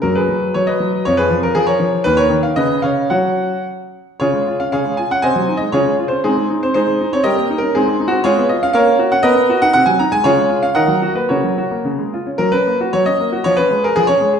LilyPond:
<<
  \new Staff \with { instrumentName = "Grand piano" } { \time 2/4 \key fis \major \tempo 4 = 118 << { ais'16 b'8. cis''16 dis''8. | cis''16 b'8 ais'16 gis'16 cis''8. | b'16 cis''8 eis''16 dis''8 eis''8 | fis''4 r4 |
\key des \major des''8. f''16 f''8 aes''16 ges''16 | \tuplet 3/2 { aes''4 ees''8 des''4 c''8 } | aes'8. c''16 c''8. des''16 | \tuplet 3/2 { ees''4 bes'8 aes'4 ges'8 } |
\key fis \major cis''8 dis''16 eis''16 eis''8. fis''16 | dis''8. fis''16 fis''16 gis''16 ais''16 gis''16 | cis''8. eis''16 fis''8. b'16 | cis''4. r8 |
ais'16 b'8. cis''16 dis''8. | cis''16 b'8 ais'16 gis'16 cis''8. | } \\ { r16 gis'8. r16 b'8. | r16 gis'8 r8 ais'8. | r16 ais'8 r16 b'8 cis''8 | cis''4 r4 |
<f' aes'>8. r16 <aes' des''>8 r8 | <c'' ees''>8. r16 <f' aes'>8. r16 | <c' ees'>8. r16 <ees' aes'>8. r16 | <g' bes'>8. r16 <c' ees'>8. r16 |
<eis' gis'>8 r8 <ais' cis''>8. r16 | <ais' b'>8. r4 r16 | <eis' gis'>8. r16 <ais' dis''>8. r16 | <fis' ais'>4. r8 |
r2 | r2 | } >> }
  \new Staff \with { instrumentName = "Grand piano" } { \clef bass \time 2/4 \key fis \major <fis, fis>8 fis8 fis8 fis8 | <eis, eis>8 eis8 eis8 eis8 | <dis, dis>8 dis8 cis8 cis8 | <fis cis' fis'>4 r4 |
\key des \major des16 aes16 f'16 des'16 des16 aes16 f'16 des'16 | c16 ges16 ees'16 aes16 des16 aes16 f'16 des'16 | aes16 aes16 ees'16 c'16 aes16 aes16 ees'16 c'16 | g16 bes16 ees'16 des'16 aes16 aes16 ees'16 c'16 |
\key fis \major gis16 b16 eis'16 cis'16 ais16 cis'16 fis'16 cis'16 | b16 b16 fis'16 dis'16 bis,16 fis16 dis'16 gis16 | cis16 gis16 eis'16 cis'16 dis16 fis16 fis'16 ais16 | cis16 fis16 fis'16 ais16 cis16 gis16 eis'16 cis'16 |
fis16 cis'16 ais16 fis'16 fis16 cis'16 ais16 fis'16 | eis16 cis'16 gis16 gis'16 eis16 cis'16 gis16 gis'16 | }
>>